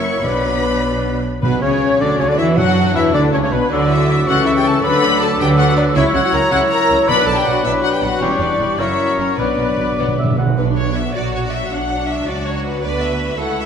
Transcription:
Already playing: double bass section F#1, cello section F#2, bassoon F#3, viola section A#3 E4, french horn section A#3 E4, clarinet A#4, flute C#5, violin section E5 C#6, oboe E5
0.24 double bass section B1, timpani B2, cello section B2, viola section B3 D4, french horn section B3 D4, flute B4, clarinet B4, violin section D5 B5, oboe D5
1.42 double bass section B1, timpani B2, cello section B2, bassoon B2, viola section B3, violin section B3 B4, french horn section B3, oboe B4, flute B4
1.61 double bass section C#2, bassoon C#3, cello section C#3, viola section C#4, french horn section C#4, violin section C#4 C#5, flute C#5, oboe C#5
2.00 double bass section D2, cello section D3, bassoon D3, viola section D4, french horn section D4, violin section D4 D5, clarinet F#4, flute D5, oboe D5
2.19 double bass section C#2, cello section C#3, bassoon C#3, viola section C#4, violin section C#4 C#5, french horn section C#4, flute C#5, oboe C#5
2.28 cello section D3, bassoon D3, viola section D4, violin section D4 D5, french horn section D4, oboe D5, flute D5
2.37 double bass section E2, cello section E3, bassoon E3, violin section E4 E5, french horn section E4, viola section E4, flute E5, oboe E5
2.57 double bass section F#2, timpani B2, cello section F#3, bassoon F#3, clarinet D4, violin section F#4 F#5, viola section F#4, french horn section F#4, flute F#5, oboe F#5
2.94 double bass section E2, cello section E3, bassoon E3, viola section E4, violin section E4 E5, french horn section E4, flute E5, oboe E5
3.13 double bass section D2, cello section D3, bassoon D3, viola section D4, violin section D4 D5, french horn section D4, flute D5, oboe D5
3.32 double bass section C#2, cello section C#3, bassoon C#3, viola section C#4, french horn section C#4, violin section C#4 C#5, flute C#5, oboe C#5
3.42 cello section C#3, bassoon C#3, violin section C#4 C#5, viola section C#4, french horn section C#4, flute C#5, oboe C#5
3.51 double bass section B1, cello section B2, bassoon B2, viola section B3, violin section B3 B4, french horn section B3, flute B4, oboe B4
3.70 double bass section D2, cello section D3, bassoon F#3, french horn section F#3 D4, viola section D4, clarinet F#4, violin section F#4 D5, oboe A4, flute D6
3.90 violin section D4 E5, viola section E4
4.10 violin section F#4
4.26 double bass section C#2, cello section C#3, bassoon E3, french horn section E3 C#4, violin section C#4 F#5, viola section F#4, clarinet A4, flute C#6
4.46 viola section E4, violin section E4 E5
4.56 viola section G4, violin section G5
4.65 violin section C#4 A5, viola section A4
4.83 double bass section D2, cello section D3, bassoon F#3, french horn section F#3 D4, violin section A4 B5, viola section B4, flute D6
5.04 violin section F#4
5.21 viola section A4, violin section A4 A5
5.39 double bass section D2, cello section D3, violin section F#4 G5, viola section G4, clarinet B4
5.58 viola section F#4, violin section A4 F#5
5.67 viola section F#4, violin section F#5
5.76 viola section D4, violin section F#4 D5
5.95 double bass section C#2, cello section C#3, french horn section F#3 E4, bassoon F#3, violin section E4 E5, viola section E4, clarinet C#5, oboe C#5, flute E6
6.14 double bass section C#2, cello section C#3, violin section E4 F#5, viola section F#4
6.24 viola section F#4, violin section F#5
6.33 double bass section C#2, cello section C#3, violin section E4 A#5, viola section A#4
6.51 double bass section C#2, cello section C#3, french horn section F#3 E4, bassoon F#3, violin section E4 F#5, viola section F#4, oboe C#5, flute E6
6.70 viola section A#4, violin section A#5
6.88 double bass section C#2, cello section C#3, violin section E4
7.07 double bass section B1, cello section B2, timpani B2, french horn section F#3 D4, bassoon F#3, violin section D4 B5, viola section B4, oboe B4, clarinet D5, flute D6
7.27 double bass section B1, cello section B2, violin section D4 A5, viola section A4
7.36 viola section G4, violin section G5
7.44 double bass section B1, cello section B2, violin section D4 F#5, viola section F#4
7.64 double bass section B1, cello section B2, violin section D4 E5, viola section E4, clarinet B4
7.83 viola section F#4, violin section F#5
7.93 viola section G4, violin section G5
8.02 double bass section B1, cello section B2, violin section D4 F#5, viola section F#4
8.21 double bass section E1, cello section E2, violin section G3 C#5, bassoon G3, french horn section G3 E4, viola section C#4, oboe G4, flute C#6
8.40 double bass section E1, cello section E2, violin section G3 D5, viola section D4
8.59 double bass section E1, cello section E2, violin section G3
8.78 double bass section F#1, cello section F#2, french horn section F#3 C#4, bassoon F#3, violin section A#3 E5, viola section E4, oboe A#4, clarinet C#5, flute C#6
9.18 double bass section F#1, cello section F#2, violin section A#3 C#5, viola section C#4
9.38 double bass section B1, cello section B2, timpani B2, french horn section F#3 D4, bassoon F#3, violin section B3 B4, viola section B3, oboe B4, clarinet D5, flute D6
9.46 timpani B2
9.54 double bass section B1, timpani B2, cello section B2
9.58 violin section B3
9.62 timpani B2
9.69 timpani B2
9.77 double bass section B1, timpani B2, cello section B2, violin section B3
9.85 timpani B2
9.92 timpani B2
9.98 double bass section B1, cello section B2, timpani B2, violin section B3, oboe D5
10.08 timpani B2
10.16 timpani B2, oboe E5
10.24 timpani B2
10.31 timpani B2
10.38 double bass section B1, cello section B2, timpani B2, violin section B3, oboe F#5
10.47 timpani B2
10.57 double bass section B1, viola section B3 D4, violin section F#4 B4 D5
10.76 violin section C#5
10.95 violin section E5
11.14 double bass section A#1, viola section F#3 F#4, cello section F#4, violin section C#5 D5
11.34 violin section C#5
11.45 violin section D5
11.53 violin section E5
11.72 double bass section B1, viola section F#3 D4, violin section D4 F#5, cello section D4
12.10 violin section E5
12.28 double bass section C#2, violin section F#4 D5, cello section F#4
12.47 violin section C#5
12.56 violin section C#5
12.65 violin section B4
12.84 double bass section D2, viola section B3 D4, violin section F#4 B4 D5, cello section B4
13.03 violin section E5
13.41 double bass section C#2, viola section A3 E4, violin section A4 F#5, cello section A4
13.60 violin section E5

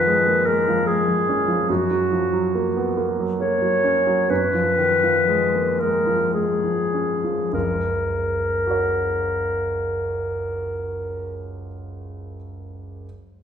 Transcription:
Already playing: grand piano F#2 D#3 F3, clarinet B4
0.07 grand piano G#3
0.27 grand piano A#3
0.46 grand piano G#3, clarinet A#4
0.68 grand piano F3
0.87 grand piano G#3, clarinet G#4
1.08 grand piano F3
1.29 grand piano C#4
1.48 grand piano F3
1.69 grand piano F#2, clarinet F#4
1.91 grand piano F#3
2.12 grand piano F3
2.33 grand piano F#3
2.55 grand piano A#3
2.77 grand piano B3
2.98 grand piano A#3
3.19 grand piano F#3
3.40 grand piano A#3, clarinet C#5
3.62 grand piano F#3
3.84 grand piano C#4
4.07 grand piano F#3
4.29 grand piano F#2, clarinet B4
4.54 grand piano F3
4.78 grand piano D#3
5.03 grand piano F3
5.28 grand piano G#3
5.54 grand piano A#3
5.80 grand piano G#3, clarinet A#4
6.06 grand piano F3
6.34 grand piano G#3, clarinet G#4
6.64 grand piano F3
6.94 grand piano C#4
7.24 grand piano F3
7.53 grand piano F#1 C#2, clarinet A#4
8.67 grand piano F#4 A#4 C#5

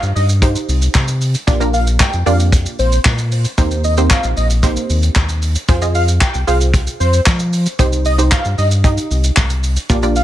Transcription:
Already playing: synth pluck D#4 G4 C5
0.03 analog synth bass G2, closed hi-hat, shaker
0.15 analog synth bass G2, analog synth lead D#5, open hi-hat, shaker
0.29 closed hi-hat, shaker
0.42 synth pluck D#4 G4 C5, kick, closed hi-hat, shaker
0.55 closed hi-hat, shaker
0.68 analog synth bass C2, open hi-hat, shaker
0.82 closed hi-hat, shaker
0.95 analog synth bass C3, kick, snare, clap, shaker
1.08 closed hi-hat, shaker
1.21 open hi-hat, shaker
1.34 closed hi-hat, shaker
1.47 analog synth bass A#1, synth pluck A#3 D4 F4 G4 D5, kick, closed hi-hat, shaker
1.60 synth pluck A#3 D4 F4 G4 A#4, closed hi-hat, shaker
1.74 analog synth lead F5, open hi-hat, shaker
1.87 closed hi-hat, shaker
2.00 analog synth lead G5, kick, snare, clap, shaker
2.13 analog synth bass F2, closed hi-hat, shaker
2.26 analog synth bass F2, synth pluck A#3 D4 F4 G4 D5, analog synth lead F5, open hi-hat, shaker
2.40 closed hi-hat, shaker
2.52 kick, closed hi-hat, shaker
2.66 closed hi-hat, shaker
2.79 analog synth bass A#1, analog synth lead C5, open hi-hat, shaker
2.92 closed hi-hat, shaker
3.05 analog synth bass A#2, kick, snare, clap, shaker
3.18 closed hi-hat, shaker
3.32 open hi-hat, shaker
3.45 closed hi-hat, shaker
3.58 analog synth bass D#2, synth pluck A#3 C4 D#4 G4 C5, kick, closed hi-hat, shaker
3.71 closed hi-hat, shaker
3.84 analog synth lead D#5, open hi-hat, shaker
3.97 synth pluck A#3 C4 D#4 G4 C5, closed hi-hat, shaker
4.10 analog synth lead F5, kick, snare, clap, shaker
4.23 analog synth bass A#1, closed hi-hat, shaker
4.37 analog synth bass A#1, analog synth lead D#5, open hi-hat, shaker
4.50 closed hi-hat, shaker
4.63 synth pluck A#3 C4 D#4 G4 C5, kick, closed hi-hat, shaker
4.76 closed hi-hat, shaker
4.90 analog synth bass D#2, open hi-hat, shaker
5.03 closed hi-hat, shaker
5.15 analog synth bass D#2, kick, snare, clap, shaker
5.29 closed hi-hat, shaker
5.42 open hi-hat, shaker
5.55 closed hi-hat, shaker
5.68 analog synth bass F2, synth pluck F4 G#4 C5, kick, closed hi-hat, shaker
5.82 synth pluck F4 G#4 D#5, closed hi-hat, shaker
5.95 analog synth lead F5, open hi-hat, shaker
6.08 closed hi-hat, shaker
6.21 analog synth lead G5, kick, snare, clap, shaker
6.34 analog synth bass C2, closed hi-hat, shaker
6.47 analog synth bass C2, synth pluck F4 G#4 C5, analog synth lead F5, open hi-hat, shaker
6.61 closed hi-hat, shaker
6.74 kick, closed hi-hat, shaker
6.87 closed hi-hat, shaker
7.00 analog synth bass F2, analog synth lead C5, open hi-hat, shaker
7.13 closed hi-hat, shaker
7.26 analog synth bass F3, kick, snare, clap, shaker
7.39 closed hi-hat, shaker
7.53 open hi-hat, shaker
7.66 closed hi-hat, shaker
7.79 analog synth bass C2, synth pluck D#4 G4 C5, kick, closed hi-hat, shaker
7.92 closed hi-hat, shaker
8.05 analog synth lead D#5, open hi-hat, shaker
8.18 synth pluck D#4 G4 C5, closed hi-hat, shaker
8.31 analog synth lead F5, kick, snare, clap, shaker
8.45 analog synth bass G2, closed hi-hat, shaker
8.58 analog synth bass G2, analog synth lead D#5, open hi-hat, shaker
8.71 closed hi-hat, shaker
8.84 synth pluck D#4 G4 D#5, kick, closed hi-hat, shaker
8.98 closed hi-hat, shaker
9.11 analog synth bass C2, open hi-hat, shaker
9.24 closed hi-hat, shaker
9.37 analog synth bass C2, kick, snare, clap, shaker
9.50 closed hi-hat, shaker
9.63 open hi-hat, shaker
9.76 closed hi-hat, shaker
9.90 analog synth bass A#1, synth pluck A#3 D4 F4 G4 D5, kick, closed hi-hat, shaker
10.03 synth pluck A#3 D4 F4 G4 D5, closed hi-hat, shaker
10.16 analog synth lead F5, open hi-hat, shaker

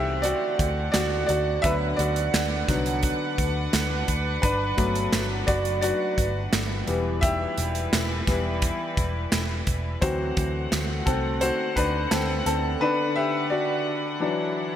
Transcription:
Already playing: picked electric bass C2, string section D3 A3 C4 F#5, upright piano E3 A3 C4 F#4 G4 C5 E5
0.22 upright piano F#4 D5, closed hi-hat
0.59 picked electric bass D2, kick, closed hi-hat
0.92 picked electric bass D2, upright piano F#4 D5, snare, clap, closed hi-hat
1.26 picked electric bass D2, upright piano F#4 D5, closed hi-hat
1.62 picked electric bass D2, upright piano D3 F#3 B3 B4 E5, string section D4 B4, kick, closed hi-hat
1.97 picked electric bass D2, upright piano F#4 D5, closed hi-hat
2.16 closed hi-hat
2.34 picked electric bass D2, snare, clap, closed hi-hat
2.68 picked electric bass C2, upright piano D3 F#3 B3, kick, snare, closed hi-hat
2.86 closed hi-hat
3.03 kick, closed hi-hat
3.38 picked electric bass D2, kick, closed hi-hat
3.73 picked electric bass D2, snare, clap, closed hi-hat
4.08 picked electric bass D2, kick, closed hi-hat
4.42 picked electric bass G1, string section F#3, upright piano D4 B4, kick, closed hi-hat
4.77 picked electric bass G1, upright piano F#3 A3 B3, kick, closed hi-hat
4.95 closed hi-hat
5.13 picked electric bass G1, snare, clap, closed hi-hat
5.47 picked electric bass F#1, upright piano F#4 D5, kick, closed hi-hat
5.65 closed hi-hat
5.81 upright piano F#4 D5, closed hi-hat
6.18 picked electric bass G1, kick, closed hi-hat
6.53 picked electric bass G1, snare, clap, closed hi-hat
6.87 picked electric bass E1, upright piano E3 G3 B3, string section E3 G3 E4 B4, closed hi-hat
7.21 upright piano G4 E5, kick, closed hi-hat
7.58 picked electric bass E1, closed hi-hat
7.75 closed hi-hat
7.93 picked electric bass E1, snare, clap, closed hi-hat
8.27 picked electric bass E1, upright piano E3 G3 B3, kick, snare, closed hi-hat
8.62 kick, closed hi-hat
8.97 picked electric bass E1, kick, closed hi-hat
9.32 picked electric bass E1, snare, clap, closed hi-hat
9.67 picked electric bass E1, kick, closed hi-hat
10.01 picked electric bass D2, string section D3 A3 C4 F#5, upright piano E3 F#3 C4 F#4 C5, kick, closed hi-hat
10.37 picked electric bass D2, kick, closed hi-hat
10.72 picked electric bass D2, snare, clap, closed hi-hat
11.06 picked electric bass C2, upright piano C4 A4, kick, closed hi-hat
11.41 upright piano F#4 C5, closed hi-hat
11.76 picked electric bass D2, upright piano D4 B4, kick, closed hi-hat
12.11 picked electric bass D2, upright piano C4 A4, snare, clap, closed hi-hat
12.46 picked electric bass D2, upright piano C4 A4, closed hi-hat
12.80 upright piano D3 B3 D4 B4, string section D4 B4
13.16 upright piano G4 E5
13.50 upright piano F#4 D5
14.20 upright piano E3 F#3 D4, string section E4

